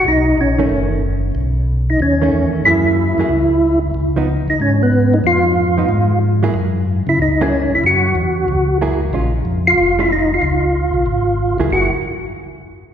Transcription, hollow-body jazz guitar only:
X:1
M:4/4
L:1/8
Q:"Swing" 1/4=185
K:C#dor
V:1 name="Hollow-body jazz guitar"
z3 [D,=A,C]3 z2 | z4 z [D,=A,C]3 | [F,A,EG]3 [F,A,EG] z4 | z [^E,B,D] z6 |
z3 [^E,B,D] z3 [F,A,=EG] | z4 z [F,A,EG] z2 | z6 [F,A,EG] z | [G,C^E] z4 [G,CE] z2 |
z6 z [F,A,EG] | [F,A,EG] z6 z |]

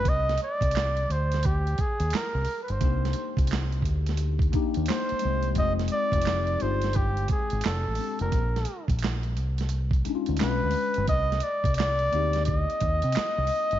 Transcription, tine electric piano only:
X:1
M:4/4
L:1/8
Q:"Swing 16ths" 1/4=87
K:Cm
V:1 name="Tine electric piano"
z8 | [B,DEG] z4 [B,DEG] z [A,CEG] | [A,CEG]3 [A,CEF] z3 [A,CDG] | z4 z [A,_D=DEF] [^G,_D=DF] z |
z3 [B,CEG]3 z2 |]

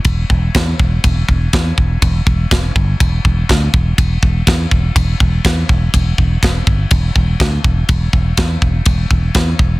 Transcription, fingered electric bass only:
X:1
M:4/4
L:1/8
Q:1/4=123
K:Em
V:1 name="Fingered electric bass" clef=bass
E,,, E,,, E,, E,,, E,,, E,,, E,, E,,, | E,,, E,,, E,,, G,,, E,,, E,,, D,, E,,, | E,,, E,,, E,, E,,, E,,, E,,, E,, E,,, | E,,, E,,, E,,, G,,, E,,, E,,, D,, E,,, |
E,,, E,,, E,, E,,, E,,, E,,, E,, E,,, |]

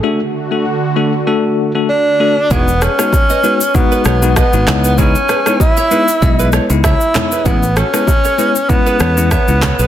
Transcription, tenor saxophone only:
X:1
M:4/4
L:1/8
Q:"Swing 16ths" 1/4=97
K:E
V:1 name="Tenor saxophone"
z6 =D2 | B, C3 B,2 B,2 | C2 E3 z E2 | B, C3 B,2 B,2 |]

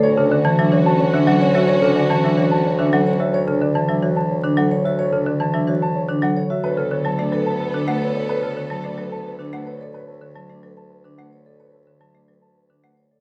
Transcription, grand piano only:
X:1
M:3/4
L:1/16
Q:1/4=109
K:D
V:1 name="Grand piano"
c A d a e c a c e f c e | c A d a e c a c e f c e | c A d a e c a c z f c e | c A d a e c a c z f c e |
B A c a d B a B z f B d | B A c a d B a B z f B d | B A c a d B a B z f z d | B A c a d B a B z f z d |]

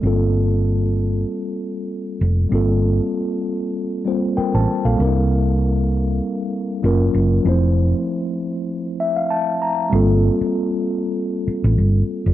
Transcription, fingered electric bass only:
X:1
M:4/4
L:1/16
Q:"Swing 16ths" 1/4=97
K:Gdor
V:1 name="Fingered electric bass" clef=bass
G,,,8 z6 F,,,2 | G,,,4 z8 z A,,, z B,,, | C,,8 z4 ^F,,,2 F,,,2 | F,,,4 z12 |
G,,,3 z8 A,,, G,,,2 z F,,, |]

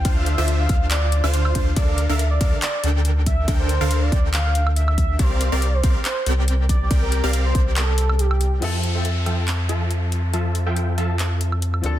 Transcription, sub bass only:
X:1
M:4/4
L:1/16
Q:"Swing 16ths" 1/4=140
K:F
V:1 name="Sub bass" clef=bass
D,,3 D,,3 D,,4- D,, D,,3 D,,2 | D,,3 D,,3 D,, z3 D,,6 | D,,3 D,,3 D,,8- D,,2 | C,,3 C,,3 C,, z3 C,,6 |
C,,3 C,,3 C,,8- C,,2 | F,,16- | F,,12- F,,2 D,,2 |]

